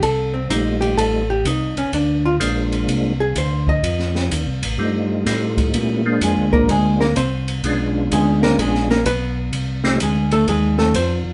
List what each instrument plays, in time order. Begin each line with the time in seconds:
0.02 tonewheel organ C2, hollow-body jazz guitar A4, kick, ride
0.34 hollow-body jazz guitar C4
0.49 tonewheel organ A#1 G3 A3 C4 D#4 F4, hollow-body jazz guitar D#4, kick, hi-hat pedal, ride
0.81 hollow-body jazz guitar G4, ride
0.97 tonewheel organ A1, hollow-body jazz guitar A4, kick, ride
1.30 hollow-body jazz guitar G4
1.45 tonewheel organ C2, hollow-body jazz guitar D#4, kick, hi-hat pedal, ride
1.75 tonewheel organ C2, hollow-body jazz guitar C#4, ride
1.92 tonewheel organ D2, hollow-body jazz guitar D4, kick, ride
2.25 hollow-body jazz guitar F4
2.40 tonewheel organ A#1 G#3 A#3 C4 D4 F4, kick, hi-hat pedal, ride
2.72 ride
2.88 tonewheel organ C2, kick, ride
3.20 hollow-body jazz guitar G#4
3.35 tonewheel organ D2, hollow-body jazz guitar C5, kick, hi-hat pedal, ride
3.67 hollow-body jazz guitar D#5, kick
3.83 tonewheel organ F2, kick, ride
3.99 snare
4.15 snare
4.30 tonewheel organ D#2, kick, hi-hat pedal, ride
4.46 tonewheel organ C2
4.62 tonewheel organ A1, ride
4.78 tonewheel organ G2 G3 A3 C4 D#4 F4, kick
5.26 tonewheel organ A2 G3 A3 C4 D#4 F4, kick, snare, hi-hat pedal, ride
5.57 kick, ride
5.73 tonewheel organ A#2 G3 A3 B3 C#4 E4, kick, ride
6.06 tonewheel organ G#3 A#3 C4 D4 F4
6.21 tonewheel organ F2, hollow-body jazz guitar G#3 G#4, kick, hi-hat pedal, ride
6.36 tonewheel organ D2
6.52 tonewheel organ A#1, hollow-body jazz guitar A#3 A#4, kick
6.68 tonewheel organ D2, hollow-body jazz guitar G#3 G#4, kick, ride
7.00 hollow-body jazz guitar A#3 A#4, snare
7.16 tonewheel organ C2, hollow-body jazz guitar C4 C5, kick, hi-hat pedal, ride
7.48 ride
7.63 tonewheel organ B1 G#3 B3 C#4 D4 F4, kick, ride
8.11 tonewheel organ D2, hollow-body jazz guitar G#3 G#4, kick, hi-hat pedal, ride
8.43 hollow-body jazz guitar A#3 A#4, snare
8.58 tonewheel organ A#1, hollow-body jazz guitar G#3 G#4, kick, ride
8.75 snare
8.90 hollow-body jazz guitar A#3 A#4, snare
9.05 tonewheel organ B1, hollow-body jazz guitar B3 B4, kick, hi-hat pedal, ride
9.52 tonewheel organ C2, kick, ride
9.84 tonewheel organ G3 A3 C4 D#4 F4, snare
10.00 tonewheel organ D2, hollow-body jazz guitar G#3 G#4, kick, hi-hat pedal, ride
10.31 hollow-body jazz guitar A3 A4, ride
10.47 tonewheel organ D#2, hollow-body jazz guitar G#3 G#4, kick, ride
10.78 hollow-body jazz guitar A3 A4, snare
10.94 tonewheel organ F2, hollow-body jazz guitar C4 C5, kick, hi-hat pedal, ride
11.25 tonewheel organ F2